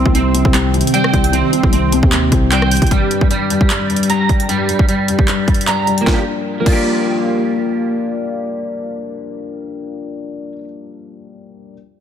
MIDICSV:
0, 0, Header, 1, 6, 480
1, 0, Start_track
1, 0, Key_signature, -2, "minor"
1, 0, Tempo, 394737
1, 1621, Time_signature, 4, 2, 24, 8
1, 14596, End_track
2, 0, Start_track
2, 0, Title_t, "Ambient pad"
2, 0, Program_c, 0, 92
2, 0, Note_on_c, 0, 51, 76
2, 0, Note_on_c, 0, 60, 74
2, 0, Note_on_c, 0, 67, 91
2, 3502, Note_off_c, 0, 51, 0
2, 3502, Note_off_c, 0, 67, 0
2, 3503, Note_off_c, 0, 60, 0
2, 14596, End_track
3, 0, Start_track
3, 0, Title_t, "Clean electric guitar"
3, 0, Program_c, 1, 27
3, 0, Note_on_c, 1, 60, 96
3, 168, Note_off_c, 1, 60, 0
3, 182, Note_on_c, 1, 60, 92
3, 1140, Note_on_c, 1, 79, 110
3, 1607, Note_off_c, 1, 60, 0
3, 1622, Note_on_c, 1, 60, 101
3, 2087, Note_off_c, 1, 60, 0
3, 2102, Note_on_c, 1, 60, 84
3, 3045, Note_off_c, 1, 79, 0
3, 3059, Note_on_c, 1, 79, 98
3, 3540, Note_off_c, 1, 79, 0
3, 3541, Note_off_c, 1, 60, 0
3, 3541, Note_on_c, 1, 55, 89
3, 4008, Note_off_c, 1, 55, 0
3, 4023, Note_on_c, 1, 55, 83
3, 4983, Note_on_c, 1, 82, 94
3, 5447, Note_off_c, 1, 55, 0
3, 5461, Note_on_c, 1, 55, 96
3, 5928, Note_off_c, 1, 55, 0
3, 5943, Note_on_c, 1, 55, 78
3, 6886, Note_off_c, 1, 82, 0
3, 6900, Note_on_c, 1, 82, 92
3, 7308, Note_on_c, 1, 58, 84
3, 7380, Note_off_c, 1, 82, 0
3, 7381, Note_off_c, 1, 55, 0
3, 7381, Note_on_c, 1, 65, 76
3, 7454, Note_on_c, 1, 67, 91
3, 7481, Note_off_c, 1, 58, 0
3, 7520, Note_off_c, 1, 65, 0
3, 7559, Note_off_c, 1, 67, 0
3, 8028, Note_on_c, 1, 58, 78
3, 8101, Note_on_c, 1, 65, 74
3, 8173, Note_on_c, 1, 67, 86
3, 12790, Note_off_c, 1, 58, 0
3, 12863, Note_off_c, 1, 65, 0
3, 12936, Note_off_c, 1, 67, 0
3, 14596, End_track
4, 0, Start_track
4, 0, Title_t, "Grand piano"
4, 0, Program_c, 2, 0
4, 0, Control_c, 2, 64, 127
4, 0, Note_on_c, 2, 48, 74
4, 167, Note_off_c, 2, 48, 0
4, 186, Note_on_c, 2, 48, 80
4, 399, Note_off_c, 2, 48, 0
4, 417, Note_on_c, 2, 48, 85
4, 632, Note_off_c, 2, 48, 0
4, 650, Note_on_c, 2, 48, 73
4, 885, Note_off_c, 2, 48, 0
4, 903, Note_on_c, 2, 48, 82
4, 1137, Note_on_c, 2, 55, 94
4, 1363, Note_off_c, 2, 55, 0
4, 1381, Note_on_c, 2, 55, 78
4, 1592, Note_off_c, 2, 48, 0
4, 1610, Note_on_c, 2, 48, 89
4, 1841, Note_off_c, 2, 48, 0
4, 1859, Note_on_c, 2, 48, 71
4, 2086, Note_off_c, 2, 48, 0
4, 2104, Note_on_c, 2, 48, 78
4, 2324, Note_off_c, 2, 48, 0
4, 2342, Note_on_c, 2, 48, 96
4, 2565, Note_off_c, 2, 48, 0
4, 2581, Note_off_c, 2, 55, 0
4, 2583, Note_on_c, 2, 48, 68
4, 2800, Note_off_c, 2, 48, 0
4, 2818, Note_on_c, 2, 48, 75
4, 3066, Note_on_c, 2, 55, 97
4, 3281, Note_off_c, 2, 55, 0
4, 3299, Note_on_c, 2, 55, 77
4, 3539, Note_off_c, 2, 48, 0
4, 3539, Note_on_c, 2, 43, 81
4, 3540, Note_off_c, 2, 55, 0
4, 3558, Control_c, 2, 64, 0
4, 3742, Control_c, 2, 64, 127
4, 3758, Note_off_c, 2, 43, 0
4, 3776, Note_on_c, 2, 43, 69
4, 3998, Note_off_c, 2, 43, 0
4, 4016, Note_on_c, 2, 43, 77
4, 4242, Note_off_c, 2, 43, 0
4, 4260, Note_on_c, 2, 43, 90
4, 4477, Note_off_c, 2, 43, 0
4, 4496, Note_on_c, 2, 43, 68
4, 4722, Note_off_c, 2, 43, 0
4, 4740, Note_on_c, 2, 43, 73
4, 4981, Note_on_c, 2, 55, 80
4, 5203, Note_off_c, 2, 55, 0
4, 5222, Note_on_c, 2, 55, 79
4, 5448, Note_off_c, 2, 43, 0
4, 5466, Note_on_c, 2, 43, 91
4, 5689, Note_off_c, 2, 43, 0
4, 5707, Note_on_c, 2, 43, 70
4, 5928, Note_off_c, 2, 43, 0
4, 5946, Note_on_c, 2, 43, 72
4, 6172, Note_off_c, 2, 43, 0
4, 6190, Note_on_c, 2, 43, 88
4, 6402, Note_off_c, 2, 43, 0
4, 6420, Note_on_c, 2, 43, 75
4, 6421, Note_off_c, 2, 55, 0
4, 6634, Note_off_c, 2, 43, 0
4, 6652, Note_on_c, 2, 43, 66
4, 6908, Note_on_c, 2, 55, 88
4, 7120, Note_off_c, 2, 55, 0
4, 7138, Note_on_c, 2, 55, 77
4, 7309, Note_on_c, 2, 53, 82
4, 7339, Note_off_c, 2, 55, 0
4, 7358, Note_on_c, 2, 55, 74
4, 7376, Note_off_c, 2, 43, 0
4, 7396, Control_c, 2, 64, 0
4, 7406, Note_on_c, 2, 58, 73
4, 7454, Note_on_c, 2, 62, 89
4, 7482, Note_off_c, 2, 53, 0
4, 7507, Note_off_c, 2, 55, 0
4, 7533, Note_off_c, 2, 58, 0
4, 7559, Note_off_c, 2, 62, 0
4, 7603, Control_c, 2, 64, 127
4, 8028, Note_on_c, 2, 53, 84
4, 8077, Note_on_c, 2, 55, 77
4, 8126, Note_on_c, 2, 58, 76
4, 8174, Note_on_c, 2, 62, 92
4, 12790, Note_off_c, 2, 53, 0
4, 12839, Note_off_c, 2, 55, 0
4, 12888, Note_off_c, 2, 58, 0
4, 12936, Note_off_c, 2, 62, 0
4, 14273, Control_c, 2, 64, 0
4, 14596, End_track
5, 0, Start_track
5, 0, Title_t, "808-style bass"
5, 0, Program_c, 3, 38
5, 68, Note_on_c, 3, 36, 104
5, 529, Note_off_c, 3, 36, 0
5, 547, Note_on_c, 3, 36, 100
5, 1008, Note_off_c, 3, 36, 0
5, 1381, Note_on_c, 3, 36, 104
5, 1733, Note_off_c, 3, 36, 0
5, 1988, Note_on_c, 3, 36, 101
5, 2448, Note_off_c, 3, 36, 0
5, 2467, Note_on_c, 3, 39, 104
5, 2806, Note_off_c, 3, 39, 0
5, 2820, Note_on_c, 3, 36, 106
5, 3403, Note_off_c, 3, 36, 0
5, 3428, Note_on_c, 3, 36, 105
5, 3536, Note_off_c, 3, 36, 0
5, 14596, End_track
6, 0, Start_track
6, 0, Title_t, "Drums"
6, 68, Note_on_c, 9, 36, 102
6, 181, Note_on_c, 9, 42, 75
6, 189, Note_off_c, 9, 36, 0
6, 303, Note_off_c, 9, 42, 0
6, 420, Note_on_c, 9, 42, 83
6, 541, Note_off_c, 9, 42, 0
6, 547, Note_on_c, 9, 36, 109
6, 660, Note_on_c, 9, 39, 117
6, 661, Note_on_c, 9, 42, 81
6, 669, Note_off_c, 9, 36, 0
6, 782, Note_off_c, 9, 39, 0
6, 783, Note_off_c, 9, 42, 0
6, 901, Note_on_c, 9, 42, 47
6, 982, Note_off_c, 9, 42, 0
6, 982, Note_on_c, 9, 42, 63
6, 1061, Note_off_c, 9, 42, 0
6, 1061, Note_on_c, 9, 42, 80
6, 1141, Note_off_c, 9, 42, 0
6, 1141, Note_on_c, 9, 42, 86
6, 1263, Note_off_c, 9, 42, 0
6, 1268, Note_on_c, 9, 37, 96
6, 1381, Note_on_c, 9, 36, 98
6, 1381, Note_on_c, 9, 42, 56
6, 1389, Note_off_c, 9, 37, 0
6, 1503, Note_off_c, 9, 36, 0
6, 1503, Note_off_c, 9, 42, 0
6, 1508, Note_on_c, 9, 42, 90
6, 1621, Note_off_c, 9, 42, 0
6, 1621, Note_on_c, 9, 42, 77
6, 1743, Note_off_c, 9, 42, 0
6, 1861, Note_on_c, 9, 42, 80
6, 1982, Note_off_c, 9, 42, 0
6, 1988, Note_on_c, 9, 36, 101
6, 2101, Note_on_c, 9, 42, 76
6, 2109, Note_off_c, 9, 36, 0
6, 2222, Note_off_c, 9, 42, 0
6, 2340, Note_on_c, 9, 42, 84
6, 2462, Note_off_c, 9, 42, 0
6, 2467, Note_on_c, 9, 36, 103
6, 2580, Note_on_c, 9, 39, 113
6, 2580, Note_on_c, 9, 42, 80
6, 2588, Note_off_c, 9, 36, 0
6, 2701, Note_off_c, 9, 39, 0
6, 2702, Note_off_c, 9, 42, 0
6, 2820, Note_on_c, 9, 36, 102
6, 2820, Note_on_c, 9, 42, 78
6, 2942, Note_off_c, 9, 36, 0
6, 2942, Note_off_c, 9, 42, 0
6, 3060, Note_on_c, 9, 39, 103
6, 3060, Note_on_c, 9, 42, 92
6, 3181, Note_off_c, 9, 39, 0
6, 3181, Note_off_c, 9, 42, 0
6, 3188, Note_on_c, 9, 37, 100
6, 3301, Note_on_c, 9, 42, 76
6, 3301, Note_on_c, 9, 46, 96
6, 3310, Note_off_c, 9, 37, 0
6, 3365, Note_off_c, 9, 42, 0
6, 3365, Note_on_c, 9, 42, 74
6, 3422, Note_off_c, 9, 46, 0
6, 3428, Note_off_c, 9, 42, 0
6, 3428, Note_on_c, 9, 36, 105
6, 3428, Note_on_c, 9, 42, 74
6, 3485, Note_off_c, 9, 42, 0
6, 3485, Note_on_c, 9, 42, 75
6, 3541, Note_off_c, 9, 36, 0
6, 3541, Note_off_c, 9, 42, 0
6, 3541, Note_on_c, 9, 36, 117
6, 3541, Note_on_c, 9, 42, 77
6, 3662, Note_off_c, 9, 36, 0
6, 3662, Note_off_c, 9, 42, 0
6, 3781, Note_on_c, 9, 42, 80
6, 3902, Note_off_c, 9, 42, 0
6, 3907, Note_on_c, 9, 36, 96
6, 4020, Note_on_c, 9, 42, 74
6, 4029, Note_off_c, 9, 36, 0
6, 4142, Note_off_c, 9, 42, 0
6, 4261, Note_on_c, 9, 42, 83
6, 4382, Note_off_c, 9, 42, 0
6, 4387, Note_on_c, 9, 36, 104
6, 4500, Note_on_c, 9, 39, 111
6, 4501, Note_on_c, 9, 42, 81
6, 4509, Note_off_c, 9, 36, 0
6, 4622, Note_off_c, 9, 39, 0
6, 4622, Note_off_c, 9, 42, 0
6, 4740, Note_on_c, 9, 42, 46
6, 4821, Note_off_c, 9, 42, 0
6, 4821, Note_on_c, 9, 42, 62
6, 4901, Note_off_c, 9, 42, 0
6, 4901, Note_on_c, 9, 42, 78
6, 4981, Note_off_c, 9, 42, 0
6, 4981, Note_on_c, 9, 42, 83
6, 5103, Note_off_c, 9, 42, 0
6, 5221, Note_on_c, 9, 36, 94
6, 5221, Note_on_c, 9, 42, 54
6, 5342, Note_off_c, 9, 36, 0
6, 5343, Note_off_c, 9, 42, 0
6, 5348, Note_on_c, 9, 42, 85
6, 5461, Note_off_c, 9, 42, 0
6, 5461, Note_on_c, 9, 42, 77
6, 5583, Note_off_c, 9, 42, 0
6, 5701, Note_on_c, 9, 42, 77
6, 5823, Note_off_c, 9, 42, 0
6, 5828, Note_on_c, 9, 36, 100
6, 5941, Note_on_c, 9, 42, 70
6, 5950, Note_off_c, 9, 36, 0
6, 6063, Note_off_c, 9, 42, 0
6, 6181, Note_on_c, 9, 42, 83
6, 6303, Note_off_c, 9, 42, 0
6, 6307, Note_on_c, 9, 36, 102
6, 6421, Note_on_c, 9, 39, 113
6, 6421, Note_on_c, 9, 42, 78
6, 6429, Note_off_c, 9, 36, 0
6, 6542, Note_off_c, 9, 39, 0
6, 6543, Note_off_c, 9, 42, 0
6, 6661, Note_on_c, 9, 36, 92
6, 6661, Note_on_c, 9, 42, 44
6, 6742, Note_off_c, 9, 42, 0
6, 6742, Note_on_c, 9, 42, 59
6, 6782, Note_off_c, 9, 36, 0
6, 6821, Note_off_c, 9, 42, 0
6, 6821, Note_on_c, 9, 42, 77
6, 6901, Note_off_c, 9, 42, 0
6, 6901, Note_on_c, 9, 39, 97
6, 6901, Note_on_c, 9, 42, 83
6, 7022, Note_off_c, 9, 39, 0
6, 7022, Note_off_c, 9, 42, 0
6, 7141, Note_on_c, 9, 42, 51
6, 7263, Note_off_c, 9, 42, 0
6, 7269, Note_on_c, 9, 42, 86
6, 7381, Note_on_c, 9, 36, 103
6, 7381, Note_on_c, 9, 38, 89
6, 7390, Note_off_c, 9, 42, 0
6, 7503, Note_off_c, 9, 36, 0
6, 7503, Note_off_c, 9, 38, 0
6, 8101, Note_on_c, 9, 36, 103
6, 8101, Note_on_c, 9, 49, 82
6, 8222, Note_off_c, 9, 36, 0
6, 8222, Note_off_c, 9, 49, 0
6, 14596, End_track
0, 0, End_of_file